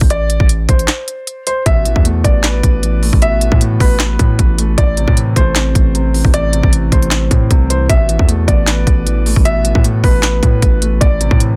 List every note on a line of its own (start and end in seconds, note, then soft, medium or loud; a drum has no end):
0.01 0.39 A1 loud
0.01 kick medium
0.10 0.47 D5 loud
0.10 closed hi-hat medium
0.30 closed hi-hat medium
0.40 0.68 A1 loud
0.40 kick medium
0.49 closed hi-hat medium
0.69 0.87 A1 loud
0.69 1.43 C5 medium
0.69 kick medium
0.69 closed hi-hat medium
0.79 closed hi-hat medium
0.88 snare loud
0.88 clap medium
0.88 closed hi-hat medium
1.08 closed hi-hat medium
1.27 closed hi-hat medium
1.47 1.62 C5 medium
1.47 closed hi-hat medium
1.66 1.95 A1 loud
1.66 2.64 B2 medium
1.66 2.03 E5 loud
1.66 kick loud
1.66 closed hi-hat medium
1.85 2.82 E3 medium
1.85 closed hi-hat medium
1.96 2.23 E2 loud
1.96 kick medium
2.05 3.01 A3 medium
2.05 closed hi-hat medium
2.24 2.62 A1 loud
2.24 3.22 B3 medium
2.24 3.18 D5 medium
2.24 kick medium
2.24 closed hi-hat medium
2.44 3.42 B4 loud
2.44 snare loud
2.44 clap loud
2.44 closed hi-hat medium
2.63 3.11 A1 loud
2.63 kick medium
2.63 closed hi-hat medium
2.83 3.40 E3 medium
2.83 closed hi-hat medium
3.03 3.59 A3 medium
3.03 open hi-hat medium
3.13 3.50 A1 loud
3.13 kick medium
3.22 4.19 B2 medium
3.22 3.59 E5 loud
3.22 closed hi-hat medium
3.41 4.38 E3 medium
3.41 closed hi-hat medium
3.52 3.79 A2 loud
3.52 kick medium
3.61 4.57 A3 medium
3.61 closed hi-hat medium
3.80 4.18 A1 loud
3.80 4.78 B3 medium
3.80 4.74 B4 medium
3.80 kick medium
3.80 open hi-hat medium
4.00 4.78 B4 loud
4.00 snare loud
4.00 clap loud
4.00 closed hi-hat medium
4.19 4.38 A2 loud
4.19 kick medium
4.19 closed hi-hat medium
4.39 4.76 A1 loud
4.39 4.78 E3 medium
4.39 kick loud
4.39 closed hi-hat medium
4.58 4.78 A3 medium
4.58 closed hi-hat medium
4.78 5.06 A1 loud
4.78 5.76 A2 medium
4.78 5.14 D5 medium
4.78 kick loud
4.78 closed hi-hat medium
4.97 5.93 C3 medium
4.97 closed hi-hat medium
5.08 5.35 A2 loud
5.08 kick medium
5.17 6.12 E3 medium
5.17 closed hi-hat medium
5.36 5.74 A1 loud
5.36 6.34 A3 medium
5.36 6.30 C5 medium
5.36 kick medium
5.36 closed hi-hat medium
5.55 6.53 C4 loud
5.55 snare loud
5.55 clap loud
5.55 closed hi-hat medium
5.75 6.23 A1 loud
5.75 kick loud
5.75 closed hi-hat medium
5.95 6.52 C3 medium
5.95 closed hi-hat medium
6.14 6.71 E3 medium
6.14 open hi-hat medium
6.25 6.62 A1 loud
6.25 kick medium
6.34 7.31 A2 medium
6.34 6.70 D5 loud
6.34 closed hi-hat medium
6.53 7.49 C3 medium
6.53 closed hi-hat medium
6.63 6.91 A1 loud
6.63 kick loud
6.72 7.69 E3 medium
6.72 closed hi-hat medium
6.92 7.30 A1 loud
6.92 7.90 A3 medium
6.92 7.66 C5 medium
6.92 kick medium
6.92 closed hi-hat medium
7.02 closed hi-hat medium
7.11 7.90 C4 medium
7.11 snare loud
7.11 clap loud
7.11 closed hi-hat medium
7.31 7.50 A2 loud
7.31 kick loud
7.31 closed hi-hat medium
7.51 7.88 C2 loud
7.51 7.90 C3 medium
7.51 kick loud
7.51 closed hi-hat medium
7.70 7.90 E3 medium
7.70 7.85 C5 medium
7.70 closed hi-hat medium
7.89 8.18 A1 loud
7.89 8.87 B2 medium
7.89 8.26 E5 loud
7.89 kick loud
7.89 closed hi-hat medium
8.09 9.05 E3 medium
8.09 closed hi-hat medium
8.19 8.47 E2 loud
8.19 kick medium
8.28 9.25 A3 medium
8.28 closed hi-hat medium
8.48 8.85 A1 loud
8.48 9.45 B3 medium
8.48 9.41 D5 medium
8.48 kick medium
8.48 closed hi-hat medium
8.67 9.65 B4 loud
8.67 snare loud
8.67 clap loud
8.67 closed hi-hat medium
8.87 9.34 A1 loud
8.87 kick loud
8.87 closed hi-hat medium
9.06 9.64 E3 medium
9.06 closed hi-hat medium
9.26 9.83 A3 medium
9.26 open hi-hat medium
9.36 9.74 A1 loud
9.36 kick medium
9.45 10.43 B2 medium
9.45 9.82 E5 loud
9.45 closed hi-hat medium
9.65 10.61 E3 medium
9.65 closed hi-hat medium
9.75 10.03 A2 loud
9.75 kick medium
9.84 10.81 A3 medium
9.84 closed hi-hat medium
10.04 10.41 A1 loud
10.04 11.01 B3 medium
10.04 10.97 B4 medium
10.04 kick medium
10.04 open hi-hat medium
10.23 11.01 B4 loud
10.23 snare loud
10.23 clap medium
10.23 closed hi-hat medium
10.43 10.61 A2 loud
10.43 kick medium
10.43 closed hi-hat medium
10.62 11.00 A1 loud
10.62 11.01 E3 medium
10.62 kick loud
10.62 closed hi-hat medium
10.82 11.01 A3 medium
10.82 closed hi-hat medium
11.01 11.30 A1 loud
11.01 11.56 A2 medium
11.01 11.38 D5 medium
11.01 kick loud
11.01 closed hi-hat medium
11.20 11.56 C3 medium
11.20 closed hi-hat medium
11.31 11.56 A2 loud
11.31 kick medium
11.40 11.56 E3 medium
11.40 closed hi-hat medium